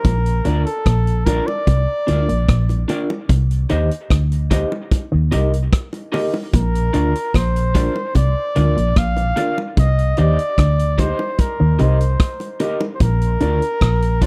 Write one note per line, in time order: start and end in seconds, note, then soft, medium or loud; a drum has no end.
0.00 0.62 A#4 medium
0.05 0.40 A#1 loud
0.05 0.29 A#2 medium
0.05 kick loud
0.05 closed hi-hat medium
0.05 high bongo medium
0.26 closed hi-hat medium
0.45 0.64 D2 medium
0.45 0.58 D3 medium
0.45 0.64 D4 medium
0.45 0.64 F4 medium
0.45 0.64 A#4 medium
0.45 0.65 D5 medium
0.45 closed hi-hat medium
0.65 1.27 A4 loud
0.65 closed hi-hat medium
0.86 1.39 A#1 medium
0.86 1.10 A#2 medium
0.86 kick medium
0.86 cross-stick medium
0.86 closed hi-hat medium
1.07 closed hi-hat soft
1.25 1.45 D4 medium
1.25 1.45 F4 medium
1.25 1.48 A#4 loud
1.25 1.46 A#4 medium
1.25 1.46 D5 medium
1.25 kick medium
1.25 closed hi-hat loud
1.25 high bongo medium
1.25 low bongo medium
1.47 2.88 D5 loud
1.47 high bongo medium
1.67 1.85 C2 medium
1.67 1.80 C3 medium
1.67 kick medium
1.67 closed hi-hat medium
1.67 high bongo medium
2.07 2.27 D2 medium
2.07 2.20 D3 medium
2.07 2.26 D4 medium
2.07 2.26 F4 medium
2.07 2.27 A#4 medium
2.07 2.27 D5 medium
2.07 closed hi-hat medium
2.07 high bongo medium
2.29 2.46 A#1 medium
2.29 2.40 A#2 medium
2.29 closed hi-hat medium
2.48 2.84 A#1 medium
2.48 2.73 A#2 medium
2.48 kick loud
2.48 cross-stick loud
2.48 closed hi-hat medium
2.69 closed hi-hat soft
2.69 high bongo soft
2.88 3.07 D4 medium
2.88 3.07 F4 medium
2.88 3.08 A#4 medium
2.88 3.08 D5 loud
2.88 closed hi-hat medium
2.88 low bongo medium
3.10 high bongo medium
3.29 3.65 C2 loud
3.29 3.54 C3 medium
3.29 kick loud
3.29 closed hi-hat medium
3.29 high bongo medium
3.51 closed hi-hat medium
3.69 3.89 D#2 loud
3.69 3.82 D#3 medium
3.69 3.88 D#4 medium
3.69 3.89 G4 medium
3.69 3.89 C5 medium
3.69 3.89 D#5 medium
3.69 closed hi-hat medium
3.91 closed hi-hat medium
4.10 4.64 D2 medium
4.10 4.35 D3 medium
4.10 kick medium
4.10 cross-stick loud
4.10 closed hi-hat medium
4.32 closed hi-hat soft
4.51 4.69 D#4 medium
4.51 4.70 G4 medium
4.51 4.70 C5 medium
4.51 4.70 D#5 medium
4.51 kick medium
4.51 closed hi-hat loud
4.51 high bongo soft
4.51 low bongo medium
4.72 high bongo medium
4.91 kick loud
4.91 closed hi-hat medium
4.91 high bongo medium
5.12 5.30 D#2 medium
5.12 5.24 D#3 medium
5.32 5.68 C2 medium
5.32 5.56 C3 medium
5.32 5.50 D#4 medium
5.32 5.51 G4 medium
5.32 5.51 A#4 medium
5.32 5.51 D#5 medium
5.32 closed hi-hat medium
5.32 high bongo medium
5.53 closed hi-hat medium
5.73 kick loud
5.73 cross-stick loud
5.73 closed hi-hat medium
5.93 closed hi-hat soft
5.93 high bongo soft
6.12 6.31 D#4 medium
6.12 6.31 G4 medium
6.12 6.32 A#4 medium
6.12 6.32 D#5 medium
6.12 open hi-hat medium
6.12 low bongo medium
6.34 high bongo medium
6.53 6.89 A#1 loud
6.53 6.78 A#2 medium
6.53 7.37 A#4 medium
6.53 kick loud
6.53 closed hi-hat medium
6.53 high bongo medium
6.75 closed hi-hat medium
6.93 7.13 D2 medium
6.93 7.07 D3 medium
6.93 7.12 D4 medium
6.93 7.13 F4 medium
6.93 7.13 A#4 medium
6.93 7.13 D5 medium
6.93 closed hi-hat medium
7.15 closed hi-hat medium
7.34 7.88 A#1 medium
7.34 7.59 A#2 medium
7.34 8.16 C5 medium
7.34 kick medium
7.34 cross-stick loud
7.34 closed hi-hat medium
7.56 closed hi-hat soft
7.75 7.93 D4 medium
7.75 7.94 F4 medium
7.75 7.94 A#4 medium
7.75 7.94 D5 loud
7.75 kick medium
7.75 closed hi-hat medium
7.75 high bongo soft
7.75 low bongo medium
7.96 high bongo medium
8.15 8.34 C2 medium
8.15 8.28 C3 medium
8.15 8.99 D5 loud
8.15 kick loud
8.15 closed hi-hat medium
8.15 high bongo medium
8.56 8.75 D2 medium
8.56 8.69 D3 medium
8.56 8.74 D4 medium
8.56 8.75 F4 medium
8.56 8.75 A#4 medium
8.56 8.75 D5 medium
8.56 closed hi-hat medium
8.56 high bongo medium
8.77 8.95 A#1 medium
8.77 8.88 A#2 medium
8.77 closed hi-hat medium
8.96 9.32 A#1 medium
8.96 9.20 A#2 medium
8.96 9.58 F5 loud
8.96 kick loud
8.96 cross-stick medium
8.96 closed hi-hat medium
9.17 closed hi-hat soft
9.17 high bongo soft
9.36 9.55 D4 medium
9.36 9.55 F4 medium
9.36 9.56 A#4 medium
9.36 9.56 D5 medium
9.36 closed hi-hat medium
9.36 low bongo medium
9.58 high bongo medium
9.77 10.13 C2 loud
9.77 10.02 C3 medium
9.77 10.21 D#5 loud
9.77 kick loud
9.77 closed hi-hat medium
9.77 high bongo medium
9.99 closed hi-hat medium
10.17 10.37 D#2 medium
10.17 10.31 D#3 medium
10.17 10.36 D#4 medium
10.17 10.37 G4 medium
10.17 10.37 C5 medium
10.17 11.01 D5 loud
10.17 10.37 D#5 medium
10.17 closed hi-hat medium
10.39 closed hi-hat medium
10.58 11.11 D2 medium
10.58 10.83 D3 medium
10.58 kick loud
10.58 cross-stick loud
10.58 closed hi-hat medium
10.79 closed hi-hat medium
10.98 11.17 D#4 medium
10.98 11.17 G4 medium
10.98 11.17 C5 medium
10.98 11.42 C5 medium
10.98 11.18 D#5 loud
10.98 kick medium
10.98 closed hi-hat medium
10.98 high bongo soft
10.98 low bongo medium
11.19 high bongo medium
11.39 11.83 A#4 medium
11.39 kick medium
11.39 closed hi-hat medium
11.39 high bongo medium
11.60 11.77 D#2 medium
11.60 11.72 D#3 medium
11.79 12.15 C2 medium
11.79 12.04 C3 medium
11.79 11.98 D#4 medium
11.79 11.98 G4 medium
11.79 11.98 A#4 loud
11.79 12.61 C5 medium
11.79 11.99 D#5 medium
11.79 closed hi-hat medium
11.79 high bongo medium
12.01 closed hi-hat medium
12.20 kick loud
12.20 cross-stick loud
12.20 closed hi-hat medium
12.40 closed hi-hat soft
12.40 high bongo soft
12.60 12.79 D#4 medium
12.60 12.79 G4 medium
12.60 12.79 A#4 medium
12.60 12.79 D#5 medium
12.60 closed hi-hat medium
12.60 low bongo medium
12.81 high bongo medium
12.95 13.04 C5 medium
13.00 13.36 A#1 loud
13.00 13.25 A#2 medium
13.00 14.25 A#4 loud
13.00 kick loud
13.00 closed hi-hat medium
13.00 high bongo medium
13.21 closed hi-hat medium
13.40 13.60 D2 loud
13.40 13.53 D3 medium
13.40 13.60 D4 medium
13.40 13.60 F4 medium
13.40 13.60 A#4 medium
13.40 13.60 D5 medium
13.40 closed hi-hat medium
13.62 closed hi-hat medium
13.81 14.27 A#1 loud
13.81 14.06 A#2 medium
13.81 kick loud
13.81 cross-stick loud
13.81 closed hi-hat medium
14.02 closed hi-hat medium
14.21 14.27 D4 medium
14.21 14.27 F4 medium
14.21 14.27 A#4 medium
14.21 14.27 C5 loud
14.21 14.27 D5 medium
14.21 kick medium
14.21 closed hi-hat medium
14.21 high bongo soft
14.21 low bongo medium